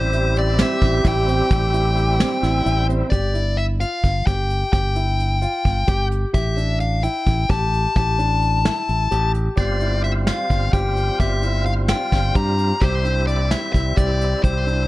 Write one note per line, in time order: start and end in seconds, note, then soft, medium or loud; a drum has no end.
0.00 0.62 A1 medium
0.00 3.07 G3 medium
0.00 3.08 C4 medium
0.00 3.09 E4 medium
0.00 2.44 G4 loud
0.00 0.38 C5 medium
0.13 0.53 E4 medium
0.13 closed hi-hat medium
0.36 0.59 D5 medium
0.36 closed hi-hat soft
0.59 0.99 C4 medium
0.59 1.07 E5 medium
0.59 snare medium
0.59 closed hi-hat medium
0.81 1.00 A1 medium
0.81 kick medium
0.81 closed hi-hat medium
1.04 1.41 A1 medium
1.04 1.24 E4 medium
1.04 1.52 G5 medium
1.04 kick loud
1.04 closed hi-hat medium
1.27 1.48 C4 medium
1.27 closed hi-hat medium
1.51 2.22 A1 medium
1.51 2.86 G5 medium
1.51 kick loud
1.51 closed hi-hat medium
1.73 2.13 E4 medium
1.73 closed hi-hat medium
1.97 closed hi-hat medium
2.19 2.59 C4 medium
2.19 snare loud
2.19 closed hi-hat medium
2.43 2.61 A1 medium
2.43 2.89 E4 medium
2.43 snare soft
2.43 closed hi-hat medium
2.65 3.02 A1 medium
2.65 2.85 E4 medium
2.65 closed hi-hat medium
2.88 3.08 C4 medium
2.88 closed hi-hat medium
3.10 3.83 G1 medium
3.10 3.32 G4 medium
3.10 3.58 D5 medium
3.10 kick medium
3.10 closed hi-hat medium
3.34 3.74 E4 medium
3.34 closed hi-hat soft
3.57 3.63 E5 medium
3.57 closed hi-hat soft
3.80 4.20 F4 medium
3.80 4.26 F5 medium
3.80 closed hi-hat medium
4.04 4.22 G1 medium
4.04 kick medium
4.04 closed hi-hat medium
4.27 4.63 G1 medium
4.27 4.67 G4 medium
4.27 4.71 G5 medium
4.27 kick loud
4.27 closed hi-hat medium
4.50 closed hi-hat soft
4.73 5.45 G1 medium
4.73 4.93 G4 medium
4.73 6.07 G5 medium
4.73 kick medium
4.73 closed hi-hat medium
4.95 5.36 E4 medium
4.95 closed hi-hat medium
5.20 closed hi-hat soft
5.42 5.82 F4 medium
5.42 closed hi-hat medium
5.65 5.83 G1 medium
5.65 kick medium
5.65 closed hi-hat soft
5.87 6.24 G1 medium
5.87 6.28 G4 medium
5.87 kick medium
5.87 closed hi-hat medium
6.12 closed hi-hat soft
6.34 7.06 A1 medium
6.34 6.54 G4 medium
6.34 6.80 E5 medium
6.34 kick medium
6.34 closed hi-hat medium
6.57 6.97 D4 medium
6.57 closed hi-hat medium
6.80 7.02 F5 medium
6.80 closed hi-hat soft
7.03 7.43 E4 medium
7.03 7.50 G5 medium
7.03 closed hi-hat medium
7.27 7.45 A1 medium
7.27 kick medium
7.27 closed hi-hat soft
7.49 7.86 A1 medium
7.49 7.90 G4 medium
7.49 7.96 A5 medium
7.49 kick loud
7.49 closed hi-hat medium
7.74 closed hi-hat soft
7.96 8.68 A1 medium
7.96 8.16 G4 medium
7.96 9.31 A5 medium
7.96 kick medium
7.96 closed hi-hat medium
8.19 8.59 D4 medium
8.19 closed hi-hat medium
8.42 closed hi-hat soft
8.65 9.05 E4 medium
8.65 snare medium
8.65 closed hi-hat medium
8.88 9.07 A1 medium
8.88 closed hi-hat soft
9.11 9.48 A1 medium
9.11 9.51 G4 medium
9.11 closed hi-hat medium
9.34 closed hi-hat medium
9.56 10.30 G1 medium
9.56 12.77 G3 soft
9.56 12.78 C4 soft
9.56 12.79 F4 medium
9.56 9.78 G4 medium
9.56 10.01 D5 medium
9.56 kick medium
9.56 closed hi-hat medium
9.80 10.21 E4 medium
9.80 closed hi-hat medium
10.04 10.10 E5 medium
10.04 closed hi-hat medium
10.27 10.67 F4 medium
10.27 10.73 F5 medium
10.27 snare medium
10.27 closed hi-hat medium
10.50 10.69 G1 medium
10.50 kick medium
10.50 closed hi-hat medium
10.73 11.09 G1 medium
10.73 11.13 G4 medium
10.73 11.20 G5 medium
10.73 kick medium
10.73 closed hi-hat medium
10.97 closed hi-hat soft
11.19 11.92 G1 medium
11.19 11.40 G4 medium
11.19 11.65 E5 medium
11.19 kick medium
11.19 closed hi-hat medium
11.43 11.83 E4 medium
11.43 closed hi-hat soft
11.66 11.72 F5 medium
11.66 closed hi-hat soft
11.88 12.29 F4 medium
11.88 12.37 G5 medium
11.88 snare medium
11.88 closed hi-hat medium
12.12 12.30 G1 medium
12.12 kick medium
12.12 snare soft
12.12 closed hi-hat soft
12.35 12.71 G2 medium
12.35 12.76 G4 medium
12.35 12.83 A#5 medium
12.35 kick loud
12.35 closed hi-hat medium
12.58 closed hi-hat medium
12.80 13.54 C2 medium
12.80 14.88 G3 medium
12.80 14.88 C4 soft
12.80 13.02 G4 medium
12.80 13.24 C5 medium
12.80 kick medium
12.80 closed hi-hat medium
12.84 14.88 E4 medium
13.05 13.45 D4 medium
13.05 closed hi-hat medium
13.27 13.49 D5 medium
13.27 closed hi-hat soft
13.51 13.91 E4 medium
13.51 13.72 E5 medium
13.51 snare medium
13.51 closed hi-hat medium
13.73 13.92 C2 medium
13.73 13.95 E5 medium
13.73 kick medium
13.73 closed hi-hat medium
13.97 14.33 C2 medium
13.97 14.37 G4 medium
13.97 14.43 D5 medium
13.97 kick medium
13.97 closed hi-hat medium
14.21 closed hi-hat medium
14.43 14.88 C2 medium
14.43 14.63 G4 medium
14.43 14.88 C5 medium
14.43 kick medium
14.43 closed hi-hat medium
14.66 14.88 D4 medium
14.66 closed hi-hat soft